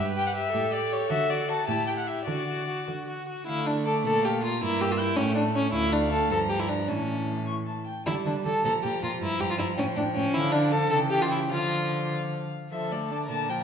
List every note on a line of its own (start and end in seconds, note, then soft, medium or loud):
0.00 0.45 G2 medium
0.00 0.16 G4 soft
0.00 0.53 B4 medium
0.16 0.35 G4 soft
0.16 0.26 G5 medium
0.27 0.30 F#5 medium
0.35 0.53 G4 soft
0.35 0.75 E5 medium
0.54 1.01 A2 medium
0.54 0.71 G4 soft
0.54 1.66 A4 medium
0.71 0.90 G4 soft
0.71 0.94 D5 medium
0.90 1.09 G4 soft
0.90 1.11 C#5 medium
1.10 1.58 D3 medium
1.10 1.29 F#4 medium
1.10 1.31 E5 medium
1.29 1.48 F#4 soft
1.29 1.51 D5 medium
1.48 1.67 F#4 soft
1.48 1.67 A5 medium
1.67 2.18 A2 medium
1.67 2.26 E4 soft
1.67 1.87 G4 soft
1.67 1.86 A5 medium
1.87 2.07 G4 soft
1.87 1.91 G5 medium
1.98 2.09 F#5 medium
2.07 2.27 G4 soft
2.07 2.25 E5 medium
2.25 2.77 D3 medium
2.25 3.15 F#4 soft
2.25 2.47 F#4 soft
2.25 2.85 D5 soft
2.48 2.67 F#4 soft
2.67 2.87 F#4 soft
2.88 3.37 D3 soft
2.88 3.07 F#4 soft
3.08 3.27 F#4 soft
3.28 3.46 F#4 soft
3.47 4.07 D3 soft
3.47 4.57 A3 medium
3.47 3.68 E4 medium
3.47 3.68 F5 soft
3.66 3.85 D4 soft
3.66 3.87 A5 soft
3.85 3.94 A4 medium
3.85 4.04 D6 soft
4.05 4.64 A#2 soft
4.05 4.27 A4 medium
4.05 4.24 D5 soft
4.23 4.43 G4 medium
4.23 4.45 F5 soft
4.43 4.61 F4 medium
4.43 4.61 A#5 soft
4.62 5.17 G2 soft
4.62 5.17 A#3 medium
4.62 4.83 E4 medium
4.62 4.82 A#5 soft
4.80 4.93 G4 medium
4.80 5.00 E6 soft
4.91 4.98 F4 medium
4.99 5.18 E4 medium
4.99 5.17 G6 soft
5.16 5.73 A2 medium
5.16 5.73 A3 medium
5.16 5.34 C#4 medium
5.16 5.38 G5 soft
5.35 5.43 D4 medium
5.35 5.56 A5 soft
5.55 5.72 C#4 medium
5.55 5.73 C#6 soft
5.73 6.27 D2 medium
5.73 6.33 A3 medium
5.73 5.94 E4 medium
5.73 6.32 F5 soft
5.93 6.11 D4 medium
6.12 6.30 A4 medium
6.30 6.90 G2 soft
6.30 6.89 F3 soft
6.30 6.39 A4 medium
6.30 6.89 A#5 soft
6.50 6.61 G4 soft
6.60 6.71 E4 soft
6.69 6.90 D4 soft
6.88 7.87 A2 soft
6.88 7.77 E3 soft
6.88 7.47 C#4 soft
6.88 7.43 A5 soft
7.46 7.54 C#6 soft
7.66 7.86 A5 soft
7.87 8.05 G5 soft
8.06 8.14 D3 soft
8.06 8.66 G3 medium
8.06 8.14 E4 medium
8.06 8.25 A5 soft
8.26 8.34 D3 soft
8.26 8.34 D4 soft
8.26 8.45 A5 soft
8.45 8.53 D3 soft
8.45 8.64 A4 medium
8.45 8.64 A5 soft
8.65 8.72 A#2 soft
8.65 10.93 F3 soft
8.65 8.72 A4 medium
8.65 8.82 A#5 soft
8.83 8.91 A#2 soft
8.83 9.02 G4 soft
8.83 9.01 A#5 soft
9.02 9.10 A#2 soft
9.02 9.11 F4 soft
9.02 9.20 A#5 soft
9.20 9.29 G2 soft
9.20 9.42 E4 medium
9.20 9.39 A#5 soft
9.40 9.48 G2 soft
9.40 9.50 G4 medium
9.40 9.59 A#5 soft
9.50 9.54 F4 medium
9.59 9.67 G2 soft
9.59 9.66 E4 medium
9.59 9.77 A#5 soft
9.77 9.86 A2 soft
9.77 9.86 C#4 medium
9.77 9.95 G5 soft
9.95 10.04 A2 soft
9.95 10.04 D4 medium
9.95 10.14 G5 soft
10.15 10.23 A2 soft
10.15 10.35 C#4 medium
10.15 10.33 G5 soft
10.33 10.88 D3 medium
10.33 10.54 E4 medium
10.33 10.87 F5 medium
10.52 10.73 D4 medium
10.71 10.90 A4 medium
10.90 11.53 C#3 medium
10.90 11.50 E3 medium
10.90 10.98 A4 medium
10.90 11.52 G5 medium
11.10 11.23 G4 medium
11.22 11.30 F4 medium
11.31 11.39 E4 medium
11.50 12.52 D3 soft
11.50 12.40 F3 soft
11.50 12.10 F4 medium
11.50 12.52 F5 soft
12.72 13.32 D3 soft
12.72 12.93 F3 soft
12.72 13.26 A4 soft
12.72 12.94 E5 medium
12.91 13.12 A3 soft
12.91 13.11 D5 soft
13.11 13.30 D4 soft
13.11 13.19 A5 medium
13.29 13.63 A#2 soft
13.29 13.51 D3 soft
13.29 13.63 A#4 soft
13.29 13.51 A5 medium
13.49 13.63 F3 soft
13.49 13.63 G5 soft